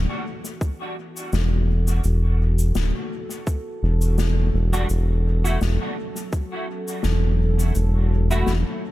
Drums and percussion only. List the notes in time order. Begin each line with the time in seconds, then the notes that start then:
0.45 cabasa
0.61 kick, cabasa
1.17 cabasa
1.33 snare, cabasa
1.88 cabasa
2.04 cabasa
2.59 cabasa
2.75 snare, cabasa
3.31 cabasa
3.47 kick, cabasa
4.01 cabasa
4.18 snare, cabasa
4.73 cabasa
4.89 cabasa
5.45 cabasa
5.61 snare, cabasa
6.16 cabasa
6.33 kick, cabasa
6.88 cabasa
7.03 snare, cabasa
7.59 cabasa
7.75 cabasa
8.31 cabasa
8.47 snare, cabasa